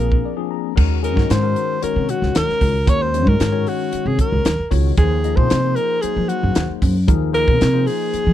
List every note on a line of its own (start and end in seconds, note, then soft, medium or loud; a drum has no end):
0.00 0.18 A#1 medium
0.00 0.33 F3 medium
0.00 0.33 A#3 medium
0.00 0.51 A#3 medium
0.00 0.33 C4 medium
0.00 0.33 D4 medium
0.00 0.33 G#4 medium
0.00 0.50 A#4 medium
0.12 kick medium
0.25 0.50 D5 medium
0.37 0.72 F3 medium
0.37 0.72 A#3 medium
0.37 0.72 C4 medium
0.37 0.72 D4 medium
0.37 0.72 G#4 medium
0.51 0.75 A#5 medium
0.75 1.17 D#2 loud
0.75 1.00 D#3 medium
0.75 1.00 G#3 medium
0.75 1.00 C#4 medium
0.75 1.00 F#4 medium
0.75 1.00 A#4 loud
0.75 kick loud
0.75 crash medium
1.02 1.15 D#3 medium
1.02 1.15 G#3 medium
1.02 1.15 C#4 medium
1.02 1.15 F#4 medium
1.02 1.15 G#4 medium
1.02 1.32 A#4 medium
1.02 closed hi-hat medium
1.16 1.28 G#2 medium
1.16 1.40 D#3 medium
1.16 1.40 G#3 medium
1.16 1.40 C#4 medium
1.16 1.40 F#4 medium
1.16 1.40 A#4 medium
1.16 kick medium
1.16 snare soft
1.30 1.53 G#2 medium
1.30 1.83 C5 medium
1.30 snare loud
1.30 closed hi-hat medium
1.42 1.78 D#3 medium
1.42 1.78 G#3 medium
1.42 1.78 C#4 medium
1.42 1.78 F#4 medium
1.42 1.78 A#4 medium
1.56 closed hi-hat medium
1.82 2.75 D#3 medium
1.82 2.75 G#3 medium
1.82 2.75 C#4 medium
1.82 2.75 F#4 medium
1.82 2.11 A#4 medium
1.82 2.75 C#5 medium
1.82 muted upright bass stroke soft
1.82 closed hi-hat medium
1.96 2.07 C3 medium
2.09 2.36 F#4 medium
2.09 closed hi-hat medium
2.22 2.33 C#2 medium
2.22 snare soft
2.35 2.47 D#2 medium
2.35 2.90 A#4 loud
2.35 snare loud
2.35 closed hi-hat medium
2.49 muted upright bass stroke soft
2.49 snare soft
2.61 2.84 C#2 medium
2.61 kick medium
2.61 open hi-hat medium
2.86 3.27 D#2 loud
2.86 3.10 D#3 medium
2.86 3.10 G#3 medium
2.86 3.10 C#4 medium
2.86 3.10 F#4 medium
2.86 3.10 A#4 medium
2.86 3.04 C#5 loud
2.86 kick loud
2.86 closed hi-hat medium
3.02 3.30 C5 medium
3.14 3.49 D#3 medium
3.14 3.49 G#3 medium
3.14 3.49 C#4 medium
3.14 3.49 F#4 medium
3.14 3.49 C#5 medium
3.14 closed hi-hat medium
3.27 3.38 G#2 medium
3.27 3.70 A#4 medium
3.27 kick medium
3.40 3.63 G#2 medium
3.40 snare loud
3.40 closed hi-hat medium
3.52 4.46 D#3 medium
3.52 4.46 G#3 medium
3.52 4.46 C#4 medium
3.52 4.46 F#4 medium
3.52 4.46 C#5 medium
3.67 4.09 F#4 medium
3.67 open hi-hat medium
3.93 muted upright bass stroke soft
3.93 closed hi-hat medium
4.06 4.17 C3 medium
4.06 4.20 G#4 medium
4.19 4.69 A#4 medium
4.19 kick medium
4.19 closed hi-hat medium
4.32 4.44 C#2 medium
4.45 4.57 D#2 medium
4.45 snare loud
4.45 closed hi-hat loud
4.59 muted upright bass stroke soft
4.71 4.94 C#2 loud
4.71 4.94 D#3 medium
4.71 4.95 G#3 medium
4.71 4.94 C#4 medium
4.71 4.95 F#4 medium
4.71 4.94 C#5 medium
4.71 kick medium
4.71 open hi-hat medium
4.97 5.39 D#2 loud
4.97 5.21 F3 medium
4.97 5.21 A#3 medium
4.97 5.21 D#4 medium
4.97 5.21 G#4 medium
4.97 5.38 G#4 medium
4.97 5.21 C5 medium
4.97 kick loud
4.97 closed hi-hat medium
5.24 5.36 F3 medium
5.24 5.36 A#3 medium
5.24 5.36 D#4 medium
5.24 5.36 G#4 medium
5.24 5.36 D#5 medium
5.24 closed hi-hat medium
5.36 5.49 C3 medium
5.36 5.60 F3 medium
5.36 5.60 A#3 medium
5.36 5.60 D#4 medium
5.36 5.60 G#4 medium
5.36 5.77 C5 loud
5.36 5.60 C5 medium
5.36 kick medium
5.50 5.73 C3 medium
5.50 snare loud
5.50 closed hi-hat medium
5.64 5.99 F3 medium
5.64 5.99 A#3 medium
5.64 5.99 D#4 medium
5.64 5.99 G#4 medium
5.64 5.99 C5 medium
5.76 6.03 A#4 loud
5.76 closed hi-hat medium
6.01 6.96 F#3 medium
6.01 6.96 A#3 medium
6.01 6.96 D#4 medium
6.01 6.30 G#4 medium
6.01 6.96 G#4 medium
6.01 6.96 C5 medium
6.01 muted upright bass stroke soft
6.01 closed hi-hat medium
6.17 6.28 F3 medium
6.28 6.81 F#4 medium
6.28 closed hi-hat medium
6.43 6.54 F#2 medium
6.55 6.67 D#2 medium
6.55 snare loud
6.55 closed hi-hat medium
6.70 muted upright bass stroke soft
6.82 7.05 F#2 medium
6.82 kick medium
6.82 open hi-hat medium
7.07 7.49 D#2 loud
7.07 7.31 F3 medium
7.07 7.31 A#3 medium
7.07 7.31 D#4 medium
7.07 7.31 G#4 medium
7.07 7.31 A#4 loud
7.07 kick loud
7.07 closed hi-hat medium
7.33 7.69 F3 medium
7.33 7.69 A#3 medium
7.33 7.69 D#4 medium
7.33 7.69 G#4 medium
7.33 7.88 A#4 loud
7.33 7.68 C5 medium
7.33 closed hi-hat medium
7.48 7.59 C3 medium
7.48 kick medium
7.61 7.84 C3 medium
7.61 snare loud
7.61 closed hi-hat medium
7.73 8.33 F3 medium
7.73 8.33 A#3 medium
7.73 8.33 D#4 medium
7.73 8.33 G#4 medium
7.73 8.33 C5 medium
7.86 8.33 G#4 medium
7.86 open hi-hat medium
8.13 muted upright bass stroke soft
8.13 closed hi-hat medium
8.27 8.33 F3 medium